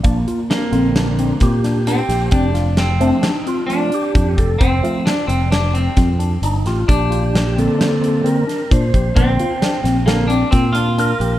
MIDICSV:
0, 0, Header, 1, 6, 480
1, 0, Start_track
1, 0, Key_signature, -2, "major"
1, 0, Tempo, 455927
1, 46, Time_signature, 5, 2, 24, 8
1, 11990, End_track
2, 0, Start_track
2, 0, Title_t, "Tine electric piano"
2, 0, Program_c, 0, 4
2, 43, Note_on_c, 0, 62, 76
2, 172, Note_off_c, 0, 62, 0
2, 289, Note_on_c, 0, 65, 68
2, 416, Note_off_c, 0, 65, 0
2, 524, Note_on_c, 0, 62, 73
2, 653, Note_off_c, 0, 62, 0
2, 761, Note_on_c, 0, 60, 71
2, 890, Note_off_c, 0, 60, 0
2, 1012, Note_on_c, 0, 62, 66
2, 1138, Note_off_c, 0, 62, 0
2, 1254, Note_on_c, 0, 60, 71
2, 1380, Note_off_c, 0, 60, 0
2, 1486, Note_on_c, 0, 60, 75
2, 1614, Note_off_c, 0, 60, 0
2, 1729, Note_on_c, 0, 62, 68
2, 1857, Note_off_c, 0, 62, 0
2, 1970, Note_on_c, 0, 62, 72
2, 2097, Note_off_c, 0, 62, 0
2, 2202, Note_on_c, 0, 67, 67
2, 2331, Note_off_c, 0, 67, 0
2, 2436, Note_on_c, 0, 60, 85
2, 2567, Note_off_c, 0, 60, 0
2, 2677, Note_on_c, 0, 65, 69
2, 2808, Note_off_c, 0, 65, 0
2, 2914, Note_on_c, 0, 62, 71
2, 3045, Note_off_c, 0, 62, 0
2, 3166, Note_on_c, 0, 60, 74
2, 3294, Note_off_c, 0, 60, 0
2, 3396, Note_on_c, 0, 62, 75
2, 3526, Note_off_c, 0, 62, 0
2, 3642, Note_on_c, 0, 60, 67
2, 3771, Note_off_c, 0, 60, 0
2, 3874, Note_on_c, 0, 60, 77
2, 4005, Note_off_c, 0, 60, 0
2, 4115, Note_on_c, 0, 62, 71
2, 4246, Note_off_c, 0, 62, 0
2, 4357, Note_on_c, 0, 62, 70
2, 4487, Note_off_c, 0, 62, 0
2, 4598, Note_on_c, 0, 67, 72
2, 4728, Note_off_c, 0, 67, 0
2, 4852, Note_on_c, 0, 60, 83
2, 4978, Note_off_c, 0, 60, 0
2, 5092, Note_on_c, 0, 65, 69
2, 5218, Note_off_c, 0, 65, 0
2, 5327, Note_on_c, 0, 62, 75
2, 5454, Note_off_c, 0, 62, 0
2, 5563, Note_on_c, 0, 60, 73
2, 5691, Note_off_c, 0, 60, 0
2, 5808, Note_on_c, 0, 62, 72
2, 5935, Note_off_c, 0, 62, 0
2, 6037, Note_on_c, 0, 60, 72
2, 6167, Note_off_c, 0, 60, 0
2, 6280, Note_on_c, 0, 60, 76
2, 6409, Note_off_c, 0, 60, 0
2, 6519, Note_on_c, 0, 62, 67
2, 6648, Note_off_c, 0, 62, 0
2, 6770, Note_on_c, 0, 62, 71
2, 6896, Note_off_c, 0, 62, 0
2, 7014, Note_on_c, 0, 67, 65
2, 7139, Note_off_c, 0, 67, 0
2, 7251, Note_on_c, 0, 62, 82
2, 7377, Note_off_c, 0, 62, 0
2, 7478, Note_on_c, 0, 65, 69
2, 7607, Note_off_c, 0, 65, 0
2, 7721, Note_on_c, 0, 62, 68
2, 7849, Note_off_c, 0, 62, 0
2, 7962, Note_on_c, 0, 60, 73
2, 8090, Note_off_c, 0, 60, 0
2, 8196, Note_on_c, 0, 62, 71
2, 8326, Note_off_c, 0, 62, 0
2, 8436, Note_on_c, 0, 60, 69
2, 8566, Note_off_c, 0, 60, 0
2, 8676, Note_on_c, 0, 60, 82
2, 8806, Note_off_c, 0, 60, 0
2, 8919, Note_on_c, 0, 62, 66
2, 9048, Note_off_c, 0, 62, 0
2, 9171, Note_on_c, 0, 62, 72
2, 9296, Note_off_c, 0, 62, 0
2, 9410, Note_on_c, 0, 67, 65
2, 9536, Note_off_c, 0, 67, 0
2, 9647, Note_on_c, 0, 62, 86
2, 9773, Note_off_c, 0, 62, 0
2, 9892, Note_on_c, 0, 65, 69
2, 10017, Note_off_c, 0, 65, 0
2, 10125, Note_on_c, 0, 62, 79
2, 10252, Note_off_c, 0, 62, 0
2, 10352, Note_on_c, 0, 60, 74
2, 10483, Note_off_c, 0, 60, 0
2, 10605, Note_on_c, 0, 62, 76
2, 10732, Note_off_c, 0, 62, 0
2, 10838, Note_on_c, 0, 60, 70
2, 10967, Note_off_c, 0, 60, 0
2, 11072, Note_on_c, 0, 60, 85
2, 11202, Note_off_c, 0, 60, 0
2, 11318, Note_on_c, 0, 62, 78
2, 11447, Note_off_c, 0, 62, 0
2, 11562, Note_on_c, 0, 62, 78
2, 11690, Note_off_c, 0, 62, 0
2, 11799, Note_on_c, 0, 67, 67
2, 11928, Note_off_c, 0, 67, 0
2, 11990, End_track
3, 0, Start_track
3, 0, Title_t, "Clean electric guitar"
3, 0, Program_c, 1, 27
3, 0, Note_on_c, 1, 60, 77
3, 529, Note_on_c, 1, 58, 75
3, 615, Note_off_c, 1, 60, 0
3, 1971, Note_on_c, 1, 60, 88
3, 2012, Note_off_c, 1, 58, 0
3, 2436, Note_off_c, 1, 60, 0
3, 2440, Note_on_c, 1, 62, 95
3, 2926, Note_off_c, 1, 62, 0
3, 2930, Note_on_c, 1, 60, 88
3, 3855, Note_off_c, 1, 60, 0
3, 3859, Note_on_c, 1, 62, 90
3, 4575, Note_off_c, 1, 62, 0
3, 4575, Note_on_c, 1, 60, 90
3, 4824, Note_off_c, 1, 60, 0
3, 4828, Note_on_c, 1, 60, 90
3, 5283, Note_off_c, 1, 60, 0
3, 5323, Note_on_c, 1, 62, 91
3, 5547, Note_off_c, 1, 62, 0
3, 5551, Note_on_c, 1, 60, 77
3, 5803, Note_off_c, 1, 60, 0
3, 5807, Note_on_c, 1, 62, 80
3, 6044, Note_off_c, 1, 62, 0
3, 6049, Note_on_c, 1, 60, 74
3, 6964, Note_off_c, 1, 60, 0
3, 7244, Note_on_c, 1, 62, 89
3, 9641, Note_on_c, 1, 60, 90
3, 9715, Note_off_c, 1, 62, 0
3, 10585, Note_off_c, 1, 60, 0
3, 10589, Note_on_c, 1, 58, 88
3, 10818, Note_on_c, 1, 62, 91
3, 10844, Note_off_c, 1, 58, 0
3, 11061, Note_off_c, 1, 62, 0
3, 11065, Note_on_c, 1, 60, 97
3, 11292, Note_on_c, 1, 65, 96
3, 11321, Note_off_c, 1, 60, 0
3, 11990, Note_off_c, 1, 65, 0
3, 11990, End_track
4, 0, Start_track
4, 0, Title_t, "Tonewheel organ"
4, 0, Program_c, 2, 16
4, 37, Note_on_c, 2, 58, 78
4, 531, Note_on_c, 2, 60, 76
4, 537, Note_off_c, 2, 58, 0
4, 751, Note_on_c, 2, 50, 50
4, 755, Note_off_c, 2, 60, 0
4, 763, Note_on_c, 2, 58, 43
4, 767, Note_on_c, 2, 60, 56
4, 1015, Note_on_c, 2, 62, 81
4, 1443, Note_off_c, 2, 50, 0
4, 1450, Note_off_c, 2, 58, 0
4, 1452, Note_off_c, 2, 60, 0
4, 1504, Note_on_c, 2, 67, 80
4, 1506, Note_off_c, 2, 62, 0
4, 2654, Note_off_c, 2, 67, 0
4, 3162, Note_on_c, 2, 57, 48
4, 3164, Note_on_c, 2, 53, 50
4, 3170, Note_on_c, 2, 62, 71
4, 3174, Note_on_c, 2, 60, 56
4, 3408, Note_on_c, 2, 63, 75
4, 3416, Note_off_c, 2, 62, 0
4, 3484, Note_off_c, 2, 57, 0
4, 3485, Note_off_c, 2, 53, 0
4, 3491, Note_off_c, 2, 60, 0
4, 3655, Note_off_c, 2, 63, 0
4, 3658, Note_on_c, 2, 65, 88
4, 3892, Note_on_c, 2, 53, 47
4, 3894, Note_on_c, 2, 57, 44
4, 3901, Note_on_c, 2, 60, 53
4, 4106, Note_off_c, 2, 53, 0
4, 4107, Note_off_c, 2, 57, 0
4, 4111, Note_off_c, 2, 60, 0
4, 4147, Note_off_c, 2, 65, 0
4, 4154, Note_on_c, 2, 67, 93
4, 4619, Note_on_c, 2, 69, 87
4, 4634, Note_off_c, 2, 67, 0
4, 4845, Note_on_c, 2, 72, 88
4, 4860, Note_off_c, 2, 69, 0
4, 5069, Note_off_c, 2, 72, 0
4, 5080, Note_on_c, 2, 53, 54
4, 5093, Note_on_c, 2, 57, 48
4, 5098, Note_on_c, 2, 60, 57
4, 5402, Note_off_c, 2, 53, 0
4, 5409, Note_off_c, 2, 57, 0
4, 5411, Note_off_c, 2, 60, 0
4, 6782, Note_on_c, 2, 63, 72
4, 7020, Note_off_c, 2, 63, 0
4, 7023, Note_on_c, 2, 65, 74
4, 7256, Note_on_c, 2, 67, 75
4, 7261, Note_off_c, 2, 65, 0
4, 7967, Note_on_c, 2, 50, 52
4, 7975, Note_on_c, 2, 58, 44
4, 7983, Note_on_c, 2, 60, 58
4, 7991, Note_off_c, 2, 67, 0
4, 7992, Note_on_c, 2, 69, 90
4, 8649, Note_off_c, 2, 50, 0
4, 8654, Note_off_c, 2, 58, 0
4, 8658, Note_off_c, 2, 60, 0
4, 8672, Note_on_c, 2, 50, 45
4, 8678, Note_on_c, 2, 58, 44
4, 8683, Note_on_c, 2, 60, 51
4, 8697, Note_on_c, 2, 70, 97
4, 8719, Note_off_c, 2, 69, 0
4, 8893, Note_off_c, 2, 50, 0
4, 8896, Note_off_c, 2, 58, 0
4, 8899, Note_off_c, 2, 60, 0
4, 9177, Note_on_c, 2, 72, 85
4, 9185, Note_off_c, 2, 70, 0
4, 9629, Note_on_c, 2, 50, 50
4, 9634, Note_on_c, 2, 58, 49
4, 9644, Note_on_c, 2, 60, 56
4, 9955, Note_off_c, 2, 50, 0
4, 9958, Note_off_c, 2, 58, 0
4, 9963, Note_off_c, 2, 60, 0
4, 10328, Note_off_c, 2, 72, 0
4, 10595, Note_on_c, 2, 50, 47
4, 10603, Note_on_c, 2, 58, 42
4, 10606, Note_on_c, 2, 60, 54
4, 10815, Note_off_c, 2, 50, 0
4, 10819, Note_off_c, 2, 58, 0
4, 10821, Note_off_c, 2, 60, 0
4, 11577, Note_on_c, 2, 70, 96
4, 11990, Note_off_c, 2, 70, 0
4, 11990, End_track
5, 0, Start_track
5, 0, Title_t, "Fingered electric bass"
5, 0, Program_c, 3, 33
5, 47, Note_on_c, 3, 34, 98
5, 253, Note_off_c, 3, 34, 0
5, 760, Note_on_c, 3, 34, 75
5, 1381, Note_off_c, 3, 34, 0
5, 1489, Note_on_c, 3, 46, 80
5, 2105, Note_off_c, 3, 46, 0
5, 2198, Note_on_c, 3, 34, 75
5, 2408, Note_off_c, 3, 34, 0
5, 2442, Note_on_c, 3, 29, 94
5, 3267, Note_off_c, 3, 29, 0
5, 4372, Note_on_c, 3, 41, 83
5, 4575, Note_off_c, 3, 41, 0
5, 4614, Note_on_c, 3, 29, 87
5, 4816, Note_off_c, 3, 29, 0
5, 4851, Note_on_c, 3, 29, 95
5, 5055, Note_off_c, 3, 29, 0
5, 5559, Note_on_c, 3, 29, 78
5, 6178, Note_off_c, 3, 29, 0
5, 6284, Note_on_c, 3, 41, 81
5, 6695, Note_off_c, 3, 41, 0
5, 6758, Note_on_c, 3, 31, 76
5, 6977, Note_off_c, 3, 31, 0
5, 7008, Note_on_c, 3, 33, 72
5, 7222, Note_off_c, 3, 33, 0
5, 7248, Note_on_c, 3, 34, 94
5, 8069, Note_off_c, 3, 34, 0
5, 9176, Note_on_c, 3, 46, 84
5, 9376, Note_off_c, 3, 46, 0
5, 9411, Note_on_c, 3, 34, 83
5, 9614, Note_off_c, 3, 34, 0
5, 9652, Note_on_c, 3, 34, 98
5, 9854, Note_off_c, 3, 34, 0
5, 10361, Note_on_c, 3, 34, 79
5, 10978, Note_off_c, 3, 34, 0
5, 11085, Note_on_c, 3, 46, 91
5, 11701, Note_off_c, 3, 46, 0
5, 11792, Note_on_c, 3, 34, 84
5, 11990, Note_off_c, 3, 34, 0
5, 11990, End_track
6, 0, Start_track
6, 0, Title_t, "Drums"
6, 43, Note_on_c, 9, 42, 74
6, 47, Note_on_c, 9, 36, 97
6, 148, Note_off_c, 9, 42, 0
6, 153, Note_off_c, 9, 36, 0
6, 292, Note_on_c, 9, 42, 57
6, 397, Note_off_c, 9, 42, 0
6, 534, Note_on_c, 9, 38, 93
6, 534, Note_on_c, 9, 42, 75
6, 639, Note_off_c, 9, 38, 0
6, 639, Note_off_c, 9, 42, 0
6, 765, Note_on_c, 9, 42, 57
6, 870, Note_off_c, 9, 42, 0
6, 1008, Note_on_c, 9, 38, 105
6, 1008, Note_on_c, 9, 42, 74
6, 1114, Note_off_c, 9, 38, 0
6, 1114, Note_off_c, 9, 42, 0
6, 1250, Note_on_c, 9, 42, 58
6, 1355, Note_off_c, 9, 42, 0
6, 1477, Note_on_c, 9, 38, 31
6, 1477, Note_on_c, 9, 42, 74
6, 1485, Note_on_c, 9, 36, 90
6, 1582, Note_off_c, 9, 38, 0
6, 1582, Note_off_c, 9, 42, 0
6, 1590, Note_off_c, 9, 36, 0
6, 1730, Note_on_c, 9, 38, 30
6, 1730, Note_on_c, 9, 42, 61
6, 1835, Note_off_c, 9, 38, 0
6, 1835, Note_off_c, 9, 42, 0
6, 1969, Note_on_c, 9, 42, 82
6, 2075, Note_off_c, 9, 42, 0
6, 2206, Note_on_c, 9, 38, 33
6, 2206, Note_on_c, 9, 42, 58
6, 2311, Note_off_c, 9, 38, 0
6, 2311, Note_off_c, 9, 42, 0
6, 2434, Note_on_c, 9, 42, 78
6, 2444, Note_on_c, 9, 36, 105
6, 2539, Note_off_c, 9, 42, 0
6, 2550, Note_off_c, 9, 36, 0
6, 2685, Note_on_c, 9, 38, 31
6, 2685, Note_on_c, 9, 42, 56
6, 2790, Note_off_c, 9, 38, 0
6, 2790, Note_off_c, 9, 42, 0
6, 2918, Note_on_c, 9, 38, 100
6, 2918, Note_on_c, 9, 42, 77
6, 3023, Note_off_c, 9, 38, 0
6, 3023, Note_off_c, 9, 42, 0
6, 3167, Note_on_c, 9, 42, 59
6, 3272, Note_off_c, 9, 42, 0
6, 3401, Note_on_c, 9, 38, 99
6, 3401, Note_on_c, 9, 42, 73
6, 3506, Note_off_c, 9, 38, 0
6, 3506, Note_off_c, 9, 42, 0
6, 3650, Note_on_c, 9, 42, 57
6, 3755, Note_off_c, 9, 42, 0
6, 3894, Note_on_c, 9, 42, 66
6, 3999, Note_off_c, 9, 42, 0
6, 4126, Note_on_c, 9, 42, 57
6, 4231, Note_off_c, 9, 42, 0
6, 4370, Note_on_c, 9, 36, 100
6, 4371, Note_on_c, 9, 42, 78
6, 4476, Note_off_c, 9, 36, 0
6, 4476, Note_off_c, 9, 42, 0
6, 4611, Note_on_c, 9, 36, 71
6, 4615, Note_on_c, 9, 42, 55
6, 4716, Note_off_c, 9, 36, 0
6, 4720, Note_off_c, 9, 42, 0
6, 4851, Note_on_c, 9, 36, 109
6, 4852, Note_on_c, 9, 42, 75
6, 4956, Note_off_c, 9, 36, 0
6, 4957, Note_off_c, 9, 42, 0
6, 5102, Note_on_c, 9, 42, 56
6, 5207, Note_off_c, 9, 42, 0
6, 5336, Note_on_c, 9, 38, 106
6, 5336, Note_on_c, 9, 42, 83
6, 5442, Note_off_c, 9, 38, 0
6, 5442, Note_off_c, 9, 42, 0
6, 5573, Note_on_c, 9, 42, 64
6, 5679, Note_off_c, 9, 42, 0
6, 5815, Note_on_c, 9, 38, 95
6, 5815, Note_on_c, 9, 42, 82
6, 5920, Note_off_c, 9, 38, 0
6, 5920, Note_off_c, 9, 42, 0
6, 6052, Note_on_c, 9, 42, 61
6, 6157, Note_off_c, 9, 42, 0
6, 6282, Note_on_c, 9, 38, 31
6, 6282, Note_on_c, 9, 42, 77
6, 6286, Note_on_c, 9, 36, 95
6, 6387, Note_off_c, 9, 38, 0
6, 6387, Note_off_c, 9, 42, 0
6, 6391, Note_off_c, 9, 36, 0
6, 6529, Note_on_c, 9, 42, 61
6, 6634, Note_off_c, 9, 42, 0
6, 6769, Note_on_c, 9, 42, 81
6, 6874, Note_off_c, 9, 42, 0
6, 7009, Note_on_c, 9, 38, 32
6, 7009, Note_on_c, 9, 42, 54
6, 7115, Note_off_c, 9, 38, 0
6, 7115, Note_off_c, 9, 42, 0
6, 7252, Note_on_c, 9, 36, 101
6, 7255, Note_on_c, 9, 42, 77
6, 7358, Note_off_c, 9, 36, 0
6, 7360, Note_off_c, 9, 42, 0
6, 7495, Note_on_c, 9, 42, 53
6, 7600, Note_off_c, 9, 42, 0
6, 7743, Note_on_c, 9, 38, 99
6, 7743, Note_on_c, 9, 42, 74
6, 7848, Note_off_c, 9, 38, 0
6, 7848, Note_off_c, 9, 42, 0
6, 7985, Note_on_c, 9, 42, 55
6, 8090, Note_off_c, 9, 42, 0
6, 8221, Note_on_c, 9, 38, 105
6, 8221, Note_on_c, 9, 42, 76
6, 8326, Note_off_c, 9, 38, 0
6, 8326, Note_off_c, 9, 42, 0
6, 8462, Note_on_c, 9, 42, 59
6, 8567, Note_off_c, 9, 42, 0
6, 8694, Note_on_c, 9, 42, 72
6, 8800, Note_off_c, 9, 42, 0
6, 8942, Note_on_c, 9, 38, 35
6, 8942, Note_on_c, 9, 42, 60
6, 9047, Note_off_c, 9, 38, 0
6, 9047, Note_off_c, 9, 42, 0
6, 9174, Note_on_c, 9, 36, 100
6, 9181, Note_on_c, 9, 42, 77
6, 9280, Note_off_c, 9, 36, 0
6, 9286, Note_off_c, 9, 42, 0
6, 9412, Note_on_c, 9, 36, 70
6, 9418, Note_on_c, 9, 42, 57
6, 9517, Note_off_c, 9, 36, 0
6, 9524, Note_off_c, 9, 42, 0
6, 9649, Note_on_c, 9, 36, 108
6, 9653, Note_on_c, 9, 42, 76
6, 9755, Note_off_c, 9, 36, 0
6, 9759, Note_off_c, 9, 42, 0
6, 9890, Note_on_c, 9, 42, 59
6, 9995, Note_off_c, 9, 42, 0
6, 10131, Note_on_c, 9, 38, 101
6, 10131, Note_on_c, 9, 42, 84
6, 10236, Note_off_c, 9, 38, 0
6, 10236, Note_off_c, 9, 42, 0
6, 10374, Note_on_c, 9, 38, 33
6, 10374, Note_on_c, 9, 42, 61
6, 10480, Note_off_c, 9, 38, 0
6, 10480, Note_off_c, 9, 42, 0
6, 10609, Note_on_c, 9, 38, 105
6, 10609, Note_on_c, 9, 42, 85
6, 10714, Note_off_c, 9, 38, 0
6, 10714, Note_off_c, 9, 42, 0
6, 10842, Note_on_c, 9, 42, 63
6, 10947, Note_off_c, 9, 42, 0
6, 11078, Note_on_c, 9, 38, 33
6, 11078, Note_on_c, 9, 42, 80
6, 11083, Note_on_c, 9, 36, 93
6, 11183, Note_off_c, 9, 38, 0
6, 11183, Note_off_c, 9, 42, 0
6, 11189, Note_off_c, 9, 36, 0
6, 11314, Note_on_c, 9, 42, 67
6, 11420, Note_off_c, 9, 42, 0
6, 11565, Note_on_c, 9, 42, 84
6, 11670, Note_off_c, 9, 42, 0
6, 11802, Note_on_c, 9, 42, 59
6, 11908, Note_off_c, 9, 42, 0
6, 11990, End_track
0, 0, End_of_file